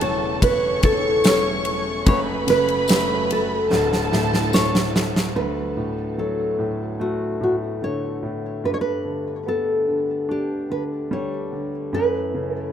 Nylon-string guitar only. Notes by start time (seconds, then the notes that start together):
0.02 C#5
0.43 B4
0.85 A4
2.08 C#5
2.50 B4
3.32 A4
4.54 C#5
5.36 B4
6.19 A4
7.01 F#4
7.44 F#4
7.84 C#5
8.65 B4
8.74 C#5
8.81 B4
9.48 A4
10.31 G4
10.72 B4
11.13 C#5
11.94 B4
12.55 A4